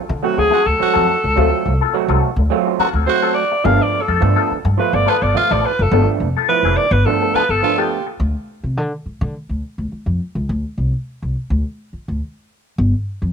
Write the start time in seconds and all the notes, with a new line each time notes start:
0.09 D3, muted clean electric guitar stroke
0.23 F#3 A3 C4 F#4, muted clean electric guitar stroke
0.37 D2 G#4, muted clean electric guitar stroke
0.50 F#3 C4 F4 F#4 A4
0.66 D2 A4, muted clean electric guitar stroke
0.79 F#3 A3 C4 F#4, muted clean electric guitar stroke, muted upright bass stroke
0.94 F2 F#3 C4 F4 A4
1.08 muted clean electric guitar stroke
1.24 C#2, muted clean electric guitar stroke
1.36 D2 F#3 A3 C4 F4 A4
1.53 muted clean electric guitar stroke
1.66 C2, muted clean electric guitar stroke
1.81 F#3 C4 F4 A4
1.93 F#3 A3 C4 F#4, muted clean electric guitar stroke
2.08 C2 F#3 C4 F4 A4
2.24 muted clean electric guitar stroke
2.36 D2, muted clean electric guitar stroke
2.50 F#3 A3 C4 F4, muted clean electric guitar stroke
2.67 muted clean electric guitar stroke
2.79 F#3 C4 F4 F#4 A4, muted upright bass stroke
2.93 D2 F#3 C4 F4 A4
3.06 F#3 A3 C4 F#4 C5
3.22 F#3 C4 F4 A4
3.34 D5, muted clean electric guitar stroke
3.52 muted clean electric guitar stroke
3.64 G1 F3 G3 A3 B3 D4 F4 A4 F5
3.80 D5, muted clean electric guitar stroke
3.94 muted clean electric guitar stroke
4.01 A4
4.08 F2 G3 B3 F4 A4
4.20 G2 F3 A3 B3 D4, muted clean electric guitar stroke
4.36 G3 B3 F4 A4
4.50 muted clean electric guitar stroke, muted upright bass stroke
4.65 G2, muted clean electric guitar stroke
4.77 F3 A3 B3 F4 B4, muted clean electric guitar stroke
4.93 G1 D5, muted clean electric guitar stroke
5.06 G3 B3 F4 A4 B4
5.21 G1 G3 B3 F4 A4 D5
5.34 F3 A3 B3 F4 F5, muted upright bass stroke
5.51 A1 G3 B3 F4 A4 D5
5.65 B4, muted clean electric guitar stroke
5.79 F#1 A4, muted clean electric guitar stroke
5.91 G1 F3 G3 A3 B3 D4 F4 A4
6.08 muted clean electric guitar stroke
6.20 F1, muted clean electric guitar stroke
6.37 G3 B3 F4 A4
6.48 F3 A3 B3 E4 B4, muted clean electric guitar stroke
6.63 F1 G3 B3 F4 A4
6.77 D5, muted clean electric guitar stroke
6.91 G1 B4, muted clean electric guitar stroke
7.05 F3 A3 B3 D4 A4, muted clean electric guitar stroke
7.22 muted clean electric guitar stroke
7.34 G3 B3 F4 A4 B4, muted upright bass stroke
7.49 G1 G3 B3 F4 A4
7.62 F3 A3 B3 D4 F4, muted clean electric guitar stroke
7.78 G3 B3 F4 G4 A4
7.91 muted clean electric guitar stroke
8.07 muted clean electric guitar stroke
8.20 D2
8.63 C3
8.77 D3
9.06 muted upright bass stroke
9.21 D3
9.49 D2
9.78 D2
9.92 muted upright bass stroke
10.06 F2
10.35 C#2
10.49 D2
10.78 C2
11.22 C2
11.50 D2
11.93 muted upright bass stroke
12.08 D2
12.78 G1
13.22 F2